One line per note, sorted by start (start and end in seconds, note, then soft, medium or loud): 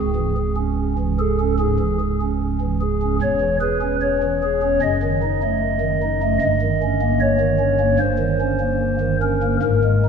0.00 3.19 C#1 medium
0.00 3.19 C#2 medium
0.00 0.34 G#4 medium
0.16 0.35 E3 soft
0.36 0.55 G#4 soft
0.56 0.94 C#4 soft
0.99 1.17 E3 soft
1.19 1.38 G#4 medium
1.19 1.54 A4 medium
1.40 1.58 C#4 soft
1.59 1.78 G#2 medium
1.59 1.98 G#4 medium
1.79 1.98 E3 medium
2.00 2.19 G#4 soft
2.21 2.58 C#4 soft
2.61 2.80 E3 soft
2.81 3.16 G#4 medium
3.02 3.19 C#4 soft
3.22 4.78 E1 medium
3.22 4.79 E2 medium
3.22 3.56 C#5 loud
3.41 3.60 E3 medium
3.61 3.80 G#4 medium
3.61 3.96 B4 medium
3.82 4.18 C#4 soft
4.01 4.80 C#5 medium
4.23 4.41 E3 medium
4.43 4.61 G#4 medium
4.62 4.79 C#4 medium
4.82 6.38 F#1 medium
4.82 6.38 F#2 medium
4.82 6.38 D#5 loud
5.03 5.21 D#3 medium
5.22 5.40 D#4 medium
5.43 5.78 A3 soft
5.81 5.99 D#3 medium
6.02 6.20 D#4 medium
6.23 6.39 A3 medium
6.41 7.97 G1 medium
6.41 7.97 G2 medium
6.41 7.20 D#5 loud
6.62 6.80 D#3 soft
6.82 7.00 C#4 medium
7.02 7.37 A#3 medium
7.20 7.98 C#5 loud
7.41 7.59 D#3 medium
7.59 7.78 C#4 medium
7.80 7.98 A#3 medium
7.99 9.57 G1 medium
7.99 9.57 G2 medium
7.99 9.16 C5 loud
8.19 8.38 D#3 medium
8.41 8.58 C#4 medium
8.60 8.96 A#3 medium
9.01 9.19 D#3 soft
9.22 9.40 C#4 soft
9.22 9.57 A#4 medium
9.43 9.60 A#3 medium
9.62 10.09 G#1 medium
9.62 10.09 G#2 medium
9.62 10.09 A#4 loud
9.84 10.02 G#3 soft
10.05 10.09 D#4 medium